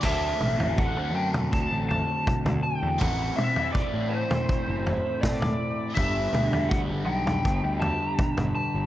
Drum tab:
CC |x---------------|----------------|----------------|
SD |----------------|------------o---|----------------|
T2 |--o----o----oo--|--o----o----oo--|--o----o----oo--|
FT |o--o---o--o--o--|o--o---o--o--o--|o--o---o--o--o--|
BD |o---o---o---o---|o---o---o---o---|o---o---o---o---|